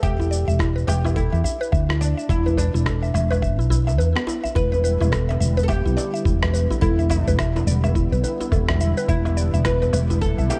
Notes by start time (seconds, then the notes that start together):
0.03 E1 G4 E5, kick, shaker
0.20 E4, djembe tone, shaker
0.31 D5, shaker
0.48 E1 E5, shaker
0.59 E4, kick, cross-stick, shaker
0.76 B4, shaker
0.87 E1 G4 B4, low woodblock, shaker
1.05 E4, djembe tone, low woodblock, shaker
1.16 E4 A4, kick, shaker
1.32 E2 E5, djembe slap, shaker
1.44 E5, djembe bass, shaker
1.61 B4, shaker
1.72 D2 E5, kick, shaker
1.89 E4, cross-stick, shaker
2.01 D4 D5, shaker
2.17 E5, shaker
2.29 E1 E4, kick, shaker
2.46 B4, djembe slap, djembe tone, shaker
2.57 D4 B4, djembe bass, shaker
2.74 E1 E4, shaker
2.86 A4, kick, cross-stick, shaker
3.03 E5, shaker
3.14 E1 E5, low woodblock, shaker
3.31 B4, djembe tone, low woodblock, shaker
3.42 E5, kick, shaker
3.59 B1 E4, shaker
3.70 E4, djembe tone, djembe bass, shaker
3.87 E5, djembe slap, shaker
3.98 E2 B4, djembe tone, shaker
4.16 B3, cross-stick, shaker
4.27 E4, djembe slap, shaker
4.44 E5, djembe tone, shaker
4.55 E1 D3 G3 B3 E4 B4, kick, shaker
4.72 B4, djembe tone, shaker
4.84 B4, shaker
5.01 E1 E4, low woodblock, shaker
5.12 A4, kick, cross-stick, shaker
5.29 E5, djembe slap, shaker
5.40 E1 E5, shaker
5.57 B4, djembe tone, shaker
5.63 A4
5.68 G4 E5, kick, low woodblock, shaker
5.86 B1 E4, shaker
5.97 D5, djembe slap, shaker
6.14 E5, shaker
6.25 E1 E4, kick, shaker
6.42 B4, cross-stick, djembe bass, low woodblock, shaker
6.54 B4, shaker
6.71 E4, djembe bass, shaker
6.81 E1 E4 A4, kick, shaker
6.99 E5, djembe tone, shaker
7.09 D4 E5, djembe bass, low woodblock, shaker
7.27 E1 B4, djembe bass, shaker
7.39 E5, kick, cross-stick, shaker
7.56 E4, djembe slap, shaker
7.67 E1 D5, shaker
7.84 E5, djembe tone, low woodblock, shaker
7.95 E4, kick, shaker
8.12 B1 B4, shaker
8.24 B4, djembe tone, shaker
8.40 E4, djembe slap, shaker
8.52 E1 A4, kick, djembe tone, low woodblock, shaker
8.69 E5, cross-stick, djembe bass, shaker
8.81 E5, shaker
8.97 B4, shaker
9.09 E1 E4 E5, kick, shaker
9.25 E4, djembe tone, low woodblock, shaker
9.37 D5, shaker
9.54 E1 E5, shaker
9.65 E4 B4, kick, cross-stick, shaker
9.82 B4, djembe slap, shaker
9.93 E1 B4, low woodblock, shaker
10.10 E4, djembe tone, shaker
10.21 A4, kick, shaker
10.38 B1 E5, shaker
10.50 G4 E5, djembe slap, shaker